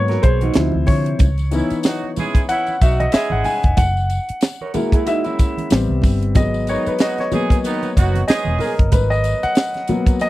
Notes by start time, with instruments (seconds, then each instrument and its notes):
Already playing: fingered electric bass G#2, grand piano F#3 A#3 B3 B4 C#5
0.08 clean electric guitar F#4 A#4, snare, closed hi-hat, muted conga
0.22 fingered electric bass B1, clean electric guitar G#4, grand piano C5, kick, closed hi-hat
0.41 clean electric guitar D#4 F#4, closed hi-hat, high conga
0.54 fingered electric bass D2, grand piano C3 F3 E4, snare, closed hi-hat
0.72 fingered electric bass D2, muted conga, high conga
0.86 fingered electric bass D3, grand piano C#5, kick, open hi-hat, low conga
1.06 closed hi-hat
1.19 fingered electric bass C#2, kick, closed hi-hat, tambourine, muted conga, low conga
1.38 closed hi-hat, tambourine, muted conga
1.51 grand piano E3 B3 D#4, horn section E3 B3 C#4 E4, closed hi-hat, tambourine
1.70 muted fingered electric bass stroke, closed hi-hat, tambourine
1.83 horn section F#3 B3 D#4 F#4, snare, closed hi-hat, tambourine, muted conga
2.04 muted conga
2.16 horn section G#3 C#4 E4 G#4, closed hi-hat, tambourine, high conga, low conga
2.35 kick, closed hi-hat, tambourine
2.49 horn section E3 B3 C#4 E4, grand piano F#5, closed hi-hat, tambourine, muted conga
2.67 closed hi-hat, tambourine, muted conga
2.81 fingered electric bass B1, horn section F#3 B3 D#4 F#4, grand piano E5, kick, closed hi-hat, tambourine
3.00 grand piano D#5, closed hi-hat, high conga
3.12 horn section G#3 C#4 E4 G#4, grand piano E5, muted fingered electric bass stroke, snare, closed hi-hat, tambourine
3.30 fingered electric bass G#1, grand piano F#5, muted conga, high conga
3.44 grand piano G#5, open hi-hat, tambourine, low conga
3.63 fingered electric bass F1, kick, closed hi-hat
3.77 fingered electric bass F#1, grand piano F#5, kick, closed hi-hat, tambourine, muted conga, low conga
3.96 tambourine, muted conga
4.10 closed hi-hat, tambourine
4.29 muted fingered electric bass stroke, closed hi-hat
4.41 snare, closed hi-hat, tambourine, muted conga
4.61 clean electric guitar A#4 C#5, muted conga
4.74 grand piano G#3 A#3 E4, clean electric guitar F#4 A#4, closed hi-hat, tambourine, high conga, low conga
4.92 clean electric guitar E4 G#4, kick, closed hi-hat, tambourine
5.06 clean electric guitar D#4 F#4, grand piano E5, closed hi-hat, tambourine, muted conga
5.24 clean electric guitar C#4 E4, closed hi-hat, tambourine, muted conga
5.39 kick, closed hi-hat, tambourine
5.57 closed hi-hat, high conga
5.70 fingered electric bass A1, grand piano G3 B3 C4, snare, closed hi-hat, tambourine, muted conga
5.88 fingered electric bass C2, high conga
6.02 fingered electric bass G1, kick, open hi-hat, tambourine, low conga
6.22 closed hi-hat
6.35 fingered electric bass G#1, grand piano F#3 G#3 B3 D#5, kick, closed hi-hat, tambourine, muted conga, low conga
6.54 tambourine
6.67 horn section D#3 B3 D#4, grand piano C#5, closed hi-hat, tambourine
6.86 grand piano B4, muted fingered electric bass stroke, closed hi-hat, tambourine
6.99 horn section F#3 B3 D#4 F#4, grand piano D#5, snare, closed hi-hat, tambourine
7.18 grand piano C#5, snare, closed hi-hat, muted conga
7.31 grand piano F#3 A#3 B3, horn section G#3 B3 D#4 G#4, closed hi-hat, tambourine, high conga, low conga
7.50 grand piano B4, kick, closed hi-hat, tambourine
7.64 horn section D#3 B3 D#4, closed hi-hat, tambourine, muted conga
7.83 closed hi-hat, tambourine, muted conga
7.96 fingered electric bass F#1, horn section F#3 B3 D#4 F#4, kick, closed hi-hat, tambourine
8.14 closed hi-hat, high conga
8.28 horn section G#3 B3 D#4 G#4, grand piano D#5, muted fingered electric bass stroke, snare, closed hi-hat, tambourine, muted conga
8.45 fingered electric bass E1, muted conga, high conga
8.59 grand piano A#4, open hi-hat, tambourine, low conga
8.79 fingered electric bass G1, kick, closed hi-hat
8.92 fingered electric bass G#1, grand piano B4, kick, closed hi-hat, tambourine, muted conga, low conga
9.10 grand piano D#5, tambourine, muted conga
9.24 closed hi-hat, tambourine
9.43 grand piano F#5, muted fingered electric bass stroke, closed hi-hat, tambourine
9.55 snare, closed hi-hat, tambourine
9.74 snare, closed hi-hat, muted conga
9.88 grand piano F#3 A#3 B3, closed hi-hat, tambourine, high conga, low conga
10.06 kick, closed hi-hat, tambourine
10.19 grand piano D#5, closed hi-hat, tambourine, muted conga